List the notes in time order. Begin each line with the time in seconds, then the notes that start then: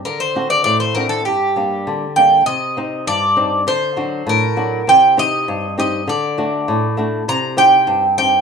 0.05 D3 A#4
0.20 C5
0.36 C4 D4 F#4
0.50 D5
0.64 A2 D5
0.80 C5
0.95 C4 D4 F#4 A#4
1.09 A4
1.25 G2 G4
1.56 G3 A#3 D4
1.87 D3
2.16 G3 A#3 D4 G5
2.46 C3 D#5
2.77 C4 D#4
3.07 G2 D5
3.37 C4 D4 D#4
3.67 D3 C5
3.97 F#3 D4 F#4
4.27 A2 A#4
4.56 F#3 D4 F#4
4.87 C3 G5
5.17 C4 D#4 G4 D#5
5.48 G2
5.78 C4 D#4 G4 D#5
6.08 D3 D5
6.38 A3 D4 F#4
6.68 A2
6.97 A3 D4 F#4
7.28 C3 A#5
7.57 C4 D#4 G4 G5
7.87 G2
8.18 C4 D#4 G4 G5